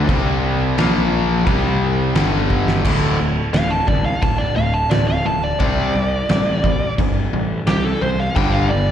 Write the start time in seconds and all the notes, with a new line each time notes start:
0.08 C2 C3 G3 C4, kick, crash
0.78 A#1 A#2 F3 A#3, snare, crash
1.46 C2 C3 G3 C4, kick, crash
2.15 G1 G2 D3 G3, snare, crash
2.50 kick
2.68 snare
2.85 D1 D2 A2 D3, kick, crash
3.19 D2 A2
3.53 D1 D2 A2 F5, snare, crash
3.71 A5
3.87 C2 D2 A2 D5, kick
4.05 F5
4.22 D1 D2 A2 A5, kick, crash
4.38 D5
4.56 D1 D2 A2 F5
4.74 A5
4.90 D1 D2 A2 D5, snare, crash
5.08 F5
5.26 D1 D2 A2 A5
5.44 D5
5.60 C2 C3 G3 C4 D5, kick, crash
5.95 C2 C3 G3
6.29 A1 C3 G3, snare, crash
6.64 C3 G3, kick
6.98 G1 C3 G3, kick, crash
7.33 A1 C3 G3
7.67 C2 C3 G3 G4, snare, crash
7.84 A4
8.01 C2 C3 G3 C5
8.20 F5
8.35 G1 G2 D3 G3 G5, kick, crash
8.52 F5
8.70 G2 D3 D5